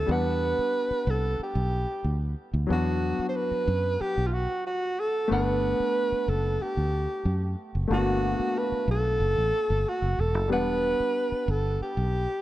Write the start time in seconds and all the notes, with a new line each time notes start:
Already playing: G3 A3 C4 E4 A4
0.06 E2 G3 B3 D4
0.11 B4 F#5
0.59 muted fingered electric bass stroke
0.91 muted fingered electric bass stroke
1.07 C2 A4
1.40 G4, muted fingered electric bass stroke
1.55 B1
2.04 D2
2.54 D2
2.67 E2 F#3 B3 D4
2.72 F#4
3.19 muted fingered electric bass stroke
3.29 C5
3.36 B4
3.51 muted fingered electric bass stroke
3.68 F#2
4.01 G4, muted fingered electric bass stroke
4.18 B1
4.27 F4
4.33 F#4
4.67 F#4
5.00 A4
5.28 G1 A3 B3 D4
5.32 B4 F#5
5.80 muted fingered electric bass stroke
6.12 muted fingered electric bass stroke
6.28 F#1 A4
6.60 G4, muted fingered electric bass stroke
6.77 D2
7.25 F#2
7.75 F#1
7.88 G1 A3 A#3 D4
7.92 B3 F#4
8.40 muted fingered electric bass stroke
8.58 B4
8.72 muted fingered electric bass stroke
8.88 B1 A4
9.20 F#1
9.37 A1
9.70 G1
9.89 F#4
10.02 F#1
10.19 E1 A4
10.34 F#1
10.48 E1 G3 B3 D4
10.52 B4 F#5
11.00 muted fingered electric bass stroke
11.32 muted fingered electric bass stroke
11.48 G1 A4
11.81 G4, muted fingered electric bass stroke
11.97 B1